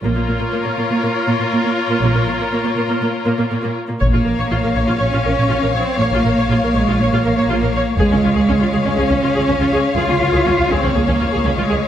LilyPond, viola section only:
\new Staff \with { instrumentName = "Viola section" } { \time 4/4 \key bes \minor \tempo 4 = 121 << { f'1~ | f'2.~ f'8 r8 | r1 | r1 |
r1 | r1 | } \\ { bes16 bes16 bes16 bes16 bes16 bes16 bes16 bes16 bes16 r16 bes16 bes16 bes16 bes16 r16 bes16 | bes16 bes16 bes16 bes16 bes16 bes16 bes16 bes16 bes16 r16 bes16 bes16 bes16 bes16 r16 bes16 | des''16 f'16 bes'16 des''16 f'16 bes'16 des''16 f'16 des''16 f'16 bes'16 des''16 f'16 bes'16 des''16 r16 | des''16 f'16 bes'16 des''16 f'16 bes'16 des''16 f'16 des''16 f'16 bes'16 des''16 f'16 bes'16 des''16 r16 |
aes'16 des'16 f'16 aes'16 des'16 f'16 aes'16 des'16 aes'16 des'16 f'16 aes'16 des'16 f'16 aes'16 r16 | aes'16 des'16 f'16 aes'16 des'16 f'16 aes'16 des'16 aes'16 des'16 f'16 aes'16 des'16 f'16 aes'16 r16 | } >> }